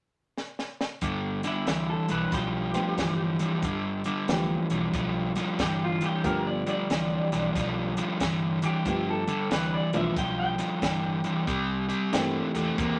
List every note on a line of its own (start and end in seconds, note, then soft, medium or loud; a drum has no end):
0.38 snare medium
0.59 snare medium
0.81 snare medium
1.01 1.44 G1 medium
1.01 1.40 G2 medium
1.01 1.40 D3 medium
1.01 kick medium
1.01 closed hi-hat medium
1.43 1.65 G2 medium
1.43 1.65 D3 medium
1.43 snare soft
1.43 closed hi-hat medium
1.47 1.89 E4 medium
1.67 1.95 D2 medium
1.67 2.05 G2 medium
1.67 2.05 E3 medium
1.67 snare loud
1.67 closed hi-hat medium
1.90 2.11 A4 medium
2.08 2.24 B1 medium
2.08 2.30 G2 medium
2.08 2.31 E3 medium
2.08 2.32 B4 medium
2.08 closed hi-hat medium
2.32 2.74 B1 loud
2.32 2.70 G2 medium
2.32 2.71 F3 medium
2.32 4.25 G4 medium
2.32 kick loud
2.32 snare soft
2.32 closed hi-hat medium
2.73 2.96 G2 medium
2.73 3.58 F3 medium
2.73 2.96 F3 medium
2.73 3.58 A3 medium
2.73 3.58 B3 medium
2.73 3.58 D4 medium
2.73 3.58 G4 medium
2.73 closed hi-hat medium
2.98 3.40 G1 medium
2.98 3.36 G2 medium
2.98 3.36 E3 medium
2.98 kick medium
2.98 snare loud
2.98 closed hi-hat medium
3.39 3.61 G2 medium
3.39 3.61 E3 medium
3.39 closed hi-hat medium
3.62 4.05 G1 medium
3.62 4.01 G2 medium
3.62 4.02 D3 medium
3.62 kick medium
3.62 closed hi-hat medium
4.04 4.27 G2 medium
4.04 4.27 D3 medium
4.04 closed hi-hat medium
4.28 4.55 D2 medium
4.28 4.66 G2 medium
4.28 4.67 E3 medium
4.28 5.28 F3 medium
4.28 5.28 A3 medium
4.28 5.28 B3 medium
4.28 5.28 D4 medium
4.28 5.28 G4 medium
4.28 snare loud
4.28 closed hi-hat medium
4.70 4.85 B1 medium
4.70 4.92 G2 medium
4.70 4.92 E3 medium
4.70 closed hi-hat medium
4.94 5.36 B1 medium
4.94 5.32 G2 medium
4.94 5.32 F3 medium
4.94 kick loud
4.94 closed hi-hat medium
5.35 5.57 G2 medium
5.35 5.57 F3 medium
5.35 snare soft
5.35 closed hi-hat medium
5.59 6.01 G1 medium
5.59 5.97 G2 medium
5.59 5.97 E3 loud
5.59 5.82 G4 medium
5.59 kick medium
5.59 snare loud
5.59 closed hi-hat medium
5.84 6.04 F4 medium
6.01 6.23 G2 medium
6.01 6.23 E3 medium
6.01 closed hi-hat medium
6.06 6.25 G4 medium
6.24 6.66 G1 loud
6.24 6.62 G2 medium
6.24 6.63 D3 medium
6.24 8.06 F3 medium
6.24 8.06 A3 medium
6.24 8.06 B3 medium
6.24 8.06 D4 medium
6.24 8.07 G4 medium
6.24 6.47 A#4 medium
6.24 kick loud
6.24 closed hi-hat medium
6.47 6.68 D5 medium
6.67 6.88 G2 medium
6.67 6.88 D3 medium
6.67 7.96 D5 medium
6.67 closed hi-hat medium
6.90 7.17 D2 medium
6.90 7.28 G2 medium
6.90 7.28 E3 medium
6.90 snare loud
6.90 closed hi-hat medium
7.32 7.47 B1 medium
7.32 7.53 G2 medium
7.32 7.53 E3 medium
7.32 snare soft
7.32 closed hi-hat medium
7.55 7.97 B1 loud
7.55 7.93 G2 medium
7.55 7.93 F3 medium
7.55 kick loud
7.55 snare soft
7.55 closed hi-hat medium
7.97 8.18 G2 medium
7.97 8.19 F3 medium
7.97 closed hi-hat medium
8.20 8.63 G1 medium
8.20 8.59 G2 medium
8.20 8.59 E3 medium
8.20 kick medium
8.20 snare loud
8.20 closed hi-hat medium
8.62 8.84 G2 medium
8.62 8.84 E3 medium
8.62 9.07 G4 loud
8.62 closed hi-hat medium
8.85 9.28 G1 medium
8.85 9.23 G2 medium
8.85 9.24 D3 medium
8.85 9.24 F3 medium
8.85 9.24 A3 medium
8.85 9.24 B3 medium
8.85 9.24 D4 medium
8.85 9.24 G4 medium
8.85 kick medium
8.85 closed hi-hat medium
9.10 9.51 A4 medium
9.27 9.49 G2 medium
9.27 9.49 D3 medium
9.27 closed hi-hat medium
9.51 9.78 D2 medium
9.51 9.89 G2 medium
9.51 9.89 E3 loud
9.51 9.74 B4 medium
9.51 snare loud
9.51 closed hi-hat medium
9.74 9.95 D5 medium
9.93 10.08 B1 medium
9.93 10.15 G2 medium
9.93 10.15 E3 medium
9.93 10.14 F3 medium
9.93 10.15 A3 medium
9.93 10.15 B3 medium
9.93 10.15 D4 medium
9.93 10.15 F4 medium
9.93 10.17 E5 medium
9.93 closed hi-hat medium
10.16 10.59 B1 loud
10.16 10.54 G2 medium
10.16 10.55 F3 medium
10.16 10.38 G5 medium
10.16 kick loud
10.16 snare soft
10.16 closed hi-hat medium
10.40 12.31 G5 medium
10.58 10.80 G2 medium
10.58 10.80 F3 medium
10.58 snare soft
10.58 closed hi-hat medium
10.82 11.24 G1 medium
10.82 11.20 G2 medium
10.82 11.20 E3 medium
10.82 kick medium
10.82 snare loud
10.82 closed hi-hat medium
11.24 11.45 G2 medium
11.24 11.46 E3 medium
11.24 closed hi-hat medium
11.47 11.89 C2 loud
11.47 11.85 C3 medium
11.47 11.85 G3 medium
11.47 kick medium
11.47 closed hi-hat medium
11.89 12.10 C3 medium
11.89 12.11 G3 medium
11.89 closed hi-hat medium
12.13 12.40 G2 medium
12.13 12.51 C3 medium
12.13 12.99 E3 medium
12.13 12.51 A3 medium
12.13 12.99 A#3 medium
12.13 12.99 C4 medium
12.13 12.99 D4 medium
12.13 12.99 G4 medium
12.13 snare loud
12.13 closed hi-hat medium
12.55 12.70 E2 medium
12.55 12.76 C3 medium
12.55 12.76 A3 medium
12.55 snare soft
12.55 closed hi-hat medium
12.78 12.99 E2 medium
12.78 12.99 C3 medium
12.78 12.99 A#3 medium
12.78 kick loud
12.78 closed hi-hat medium